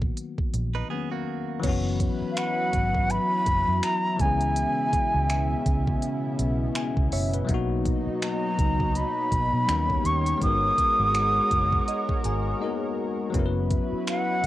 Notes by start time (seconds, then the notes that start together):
Already playing: D#3 F#3 A#3 B3 F#4
0.02 kick
0.17 closed hi-hat
0.38 kick
0.54 A#1, closed hi-hat
0.75 D#4 B4
0.89 D#3 F#3 A#3 B3 G#4
0.94 C#4
1.11 A#3 F#4
1.60 F#1 E3 F#3 B4, kick, closed hi-hat, crash
1.64 F#3 B3 C#4 E4 C#5
1.69 F#4
2.00 kick, closed hi-hat
2.21 muted fingered electric bass stroke
2.32 F5
2.37 F#5, finger snap, closed hi-hat
2.73 G#1, kick, closed hi-hat
2.95 kick
3.10 B5, closed hi-hat
3.46 F#1, kick, closed hi-hat
3.68 F#2
3.83 A#5, finger snap, closed hi-hat
4.16 C#2 B2 C#3 E3 G#3, kick, closed hi-hat
4.21 B3 C#4 G#5
4.25 G#4
4.41 closed hi-hat
4.56 closed hi-hat
4.93 muted fingered electric bass stroke, kick, closed hi-hat
5.14 C#2
5.30 finger snap, closed hi-hat
5.66 C#2, kick, closed hi-hat
5.87 kick
6.02 closed hi-hat
6.39 B1, closed hi-hat
6.75 G#5, finger snap, closed hi-hat
6.97 C#2, kick
7.12 F#1 C#5 E5, closed hi-hat, open hi-hat
7.33 B4, closed hi-hat
7.45 F#3 A#3 D#4, closed hi-hat
7.49 B1 B3 D#4, kick
7.54 F#4
7.85 kick, closed hi-hat
8.07 muted fingered electric bass stroke
8.22 A#5, finger snap, closed hi-hat
8.59 C#2, kick, closed hi-hat
8.80 kick
8.95 B5, closed hi-hat
9.32 B1, kick, closed hi-hat
9.53 B2
9.67 D#2 D#3 G3 B3 C#4 D#4 G4 C#5, finger snap, closed hi-hat
9.71 A#3
9.90 kick
10.05 D#2 C#6, closed hi-hat
10.26 closed hi-hat
10.38 G#1 G#3 B3 F#4 A#4, kick
10.42 D#4 F#4 D#6, closed hi-hat
10.47 A#4
10.78 muted fingered electric bass stroke, kick, closed hi-hat
10.99 G#1
11.15 finger snap, closed hi-hat
11.51 F#1, kick, closed hi-hat
11.73 kick
11.88 D#5, closed hi-hat
12.09 kick
12.24 G#1 G#5, closed hi-hat
12.59 G#3 A#3 D#4 F#4 D#5
12.64 B3 A#4
13.30 F#3 B3
13.34 F#1 F#3 C#4 E4 B4, kick, closed hi-hat
13.39 A#4
13.46 B4
13.71 kick, closed hi-hat
13.92 muted fingered electric bass stroke
14.07 F#5, finger snap, closed hi-hat